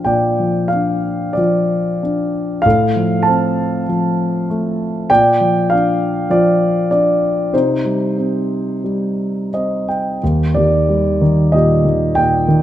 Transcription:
0.00 0.39 F3 soft
0.00 0.73 D4 soft
0.00 0.68 F5 medium
0.04 2.61 A#2 soft
0.04 1.32 D5 soft
0.04 0.67 G5 medium
0.39 1.36 F3 soft
0.68 1.37 F5 medium
0.73 1.99 D4 soft
1.33 2.61 F3 soft
1.33 2.59 D5 medium
1.38 2.62 F4 soft
2.03 2.64 D4 soft
2.62 5.06 A2 medium
2.62 3.27 F5 medium
2.66 3.85 A4 medium
2.96 3.87 F3 soft
3.23 3.82 A5 medium
3.27 4.46 C4 soft
3.89 5.06 F3 soft
4.50 5.08 A3 soft
5.10 7.50 A#2 soft
5.10 6.27 D5 medium
5.10 5.72 G5 medium
5.41 6.28 F3 soft
5.70 6.88 D4 soft
5.70 6.26 F5 medium
6.30 7.49 F3 soft
6.30 7.49 F4 soft
6.30 6.89 D5 medium
6.91 7.51 D4 soft
6.91 7.55 D5 medium
7.53 10.18 C3 soft
7.53 9.49 D#4 soft
7.53 9.49 C5 medium
7.84 8.83 G3 soft
8.17 9.48 C4 soft
8.84 10.18 G3 soft
9.54 10.21 C4 soft
9.54 9.86 D#5 soft
9.88 10.20 G5 soft
10.23 12.62 D#2 soft
10.55 11.20 D#3 soft
10.55 11.52 G4 soft
10.55 11.55 D5 medium
10.88 12.13 G3 soft
11.21 11.83 D#3 soft
11.52 12.15 A#2 soft
11.52 12.62 G4 soft
11.52 12.18 D#5 medium
11.84 12.47 D#3 soft
12.15 12.62 A#2 soft
12.15 12.62 G5 medium
12.48 12.62 D#3 soft

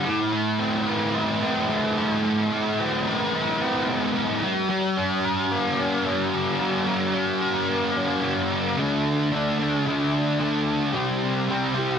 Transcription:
0.05 1.42 A2 medium
0.32 1.68 A3 medium
0.59 1.41 C4 medium
0.87 2.27 B4 medium
1.15 1.96 E4 medium
1.43 2.78 C4 medium
1.69 2.50 A3 medium
1.98 3.33 E4 medium
2.24 3.61 A2 medium
2.51 3.87 A3 medium
2.79 3.60 C4 medium
3.07 5.24 B4 medium
3.34 4.15 E4 medium
3.61 4.43 C4 medium
3.89 4.42 A3 medium
4.16 4.43 E4 medium
4.43 4.69 G3 medium
4.70 6.05 G3 medium
4.97 5.79 D4 medium
5.25 6.61 B4 medium
5.51 6.32 B3 medium
5.79 7.12 D4 medium
6.06 6.60 G3 medium
6.33 7.67 B3 medium
6.61 6.86 G3 medium
6.87 8.22 G3 medium
7.14 7.96 D4 medium
7.41 8.78 B4 medium
7.68 8.51 B3 medium
7.97 8.78 D4 medium
8.24 8.78 G3 medium
8.52 8.79 B3 medium
8.77 9.30 D3 loud
8.77 9.32 A3 medium
8.77 9.35 D4 loud
9.32 9.84 D3 medium
9.32 9.61 A3 medium
9.36 9.58 D4 medium
9.59 9.86 A3 medium
9.59 9.88 D4 medium
9.85 10.38 D3 loud
9.85 10.40 A3 loud
9.85 10.42 D4 loud
10.39 10.92 D3 medium
10.39 10.93 A3 medium
10.39 10.94 D4 medium
10.93 11.47 C3 loud
10.93 11.50 G3 loud
10.93 11.51 C4 loud
11.48 11.99 C3 medium
11.48 11.78 G3 medium
11.48 11.75 C4 medium
11.75 11.99 G3 medium
11.75 11.99 C4 medium

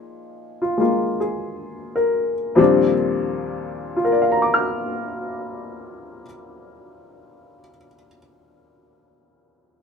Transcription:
0.00 2.54 A#2 soft
0.00 2.54 F3 soft
0.00 0.76 G#3 soft
0.00 2.61 D#4 soft
0.00 1.19 G#4 medium
0.00 1.17 D#5 medium
0.62 0.79 F4 soft
0.78 2.58 G#3 soft
0.78 2.59 A#3 soft
0.78 2.59 F4 soft
1.20 2.32 G#4 soft
1.96 2.93 A#4 soft
2.55 6.22 D#2 medium
2.55 6.23 A#2 soft
2.55 6.23 F3 medium
2.55 6.24 G3 medium
2.55 6.25 C4 medium
2.55 6.25 D4 medium
3.97 7.60 F4 soft
4.05 7.68 A#4 soft
4.12 7.75 D5 soft
4.22 7.85 F5 soft
4.32 7.95 A#5 soft
4.42 8.05 D6 soft
4.54 8.17 F6 soft

